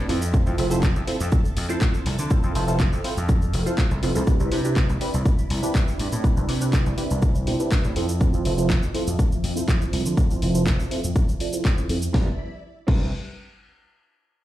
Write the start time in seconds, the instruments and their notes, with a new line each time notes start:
0.08 slap bass F2, analog polysynth C4 E4 F4 A4 C5, string machine A4 E5 A5, open hi-hat
0.22 shaker
0.33 analog polysynth C4 E4 F4 A4 C5, kick, shaker
0.46 slap bass F2, analog polysynth C4 E4 F4 A4 C5, shaker
0.58 slap bass F1, analog polysynth C4 E4 F4 A4 C5, open hi-hat
0.71 analog polysynth C4 E4 F4 A4 C5, shaker
0.83 kick, clap, shaker
0.96 slap bass F2, shaker
1.07 analog polysynth C4 E4 F4 A4 C5, muted slap bass stroke, open hi-hat
1.20 slap bass F2, shaker
1.32 kick, shaker
1.45 shaker
1.57 slap bass F2, open hi-hat
1.69 analog polysynth C4 E4 F4 A4 C5, shaker
1.81 kick, clap, shaker
1.94 shaker
2.06 slap bass C2, string machine F6, open hi-hat
2.19 slap bass D3, shaker
2.30 analog polysynth C4 E4 F4 A4 C5, muted slap bass stroke, kick, shaker
2.43 slap bass F2, analog polysynth C4 E4 F4 A4 C5, shaker
2.55 slap bass F1, analog polysynth C4 E4 F4 A4 C5, open hi-hat
2.68 analog polysynth C4 E4 F4 A4 C5, shaker
2.80 kick, clap, shaker
2.92 slap bass F2, shaker
3.04 analog polysynth C4 E4 F4 A4 C5, muted slap bass stroke, open hi-hat
3.17 slap bass F2, shaker
3.29 kick, shaker
3.42 shaker
3.54 slap bass F1, open hi-hat
3.66 analog polysynth C4 E4 F4 A4 C5, shaker
3.78 kick, clap, open hi-hat, shaker
3.91 slap bass C2, shaker
4.02 slap bass F1, analog polysynth C4 E4 F4 A4 C5, open hi-hat
4.15 slap bass C2, analog polysynth C4 E4 F4 A4 C5, shaker
4.27 analog polysynth C4 D4 E4 G4 B4, string machine E4 D5 B5, kick, shaker
4.40 slap bass C2, analog polysynth C4 D4 E4 G4 B4, shaker
4.52 slap bass C3, analog polysynth C4 D4 E4 G4 B4, open hi-hat
4.64 analog polysynth C4 D4 E4 G4 B4, shaker
4.76 kick, clap, shaker
4.89 slap bass C2, shaker
5.01 analog polysynth C4 D4 E4 G4 B4, muted slap bass stroke, open hi-hat
5.14 slap bass C2, shaker
5.26 kick, shaker
5.38 shaker
5.50 slap bass C2, open hi-hat
5.62 analog polysynth C4 D4 E4 G4 B4, shaker
5.75 kick, clap, shaker
5.88 shaker
5.99 slap bass G2, open hi-hat
6.12 slap bass A2, shaker
6.24 analog polysynth C4 D4 E4 G4 B4, muted slap bass stroke, kick, shaker
6.37 slap bass C2, analog polysynth C4 D4 E4 G4 B4, shaker
6.48 slap bass C3, analog polysynth C4 D4 E4 G4 B4, open hi-hat
6.61 analog polysynth C4 D4 E4 G4 B4, shaker
6.73 kick, clap, shaker
6.86 slap bass C2, shaker
6.97 analog polysynth C4 D4 E4 G4 B4, muted slap bass stroke, open hi-hat
7.10 slap bass C2, shaker
7.22 kick, shaker
7.35 shaker
7.47 slap bass C3, analog polysynth C4 D4 E4 G4 C5, open hi-hat
7.59 analog polysynth C4 D4 E4 G4 B4, shaker
7.72 kick, clap, open hi-hat, shaker
7.84 slap bass A2, shaker
7.96 slap bass F2, string machine F3 E5 A5, analog polysynth C4 E4 F4 A4 C5, open hi-hat
8.09 shaker
8.20 analog polysynth C4 E4 F4 A4 C5, kick, shaker
8.33 slap bass F2, analog polysynth C4 E4 F4 A4 C5, shaker
8.45 slap bass F1, analog polysynth C4 E4 F4 A4 C5, open hi-hat
8.58 analog polysynth C4 E4 F4 A4 C5, shaker
8.70 kick, clap, shaker
8.83 slap bass F2, shaker
8.94 analog polysynth C4 E4 F4 A4 C5, muted slap bass stroke, open hi-hat
9.07 slap bass F2, shaker
9.19 kick, shaker
9.32 shaker
9.44 slap bass F2, open hi-hat
9.56 analog polysynth C4 E4 F4 A4 C5, shaker
9.68 kick, clap, shaker
9.81 shaker
9.93 slap bass C2, open hi-hat
10.06 slap bass D3, shaker
10.17 analog polysynth C4 E4 F4 A4 C5, muted slap bass stroke, kick, shaker
10.30 slap bass F2, analog polysynth C4 E4 F4 A4 C5, shaker
10.42 slap bass F1, analog polysynth C4 E4 F4 A4 C5, open hi-hat
10.55 analog polysynth C4 E4 F4 A4 C5, shaker
10.67 kick, clap, shaker
10.80 slap bass F2, shaker
10.91 analog polysynth C4 E4 F4 A4 C5, muted slap bass stroke, open hi-hat
11.04 slap bass F2, shaker
11.16 kick, shaker
11.29 shaker
11.40 analog polysynth C4 E4 F4 A4 D5, open hi-hat
11.53 analog polysynth C4 E4 F4 A4 C5, shaker
11.65 kick, clap, open hi-hat, shaker
11.78 shaker
11.89 slap bass F2, analog polysynth C4 E4 F4 A4 C5, open hi-hat
12.02 shaker
12.13 slap bass C2, analog polysynth C4 D4 E4 G4 B4, string machine E4 D5 B5, kick, snare
12.87 slap bass C2, analog polysynth C4 D4 E4 G4 B4, kick, crash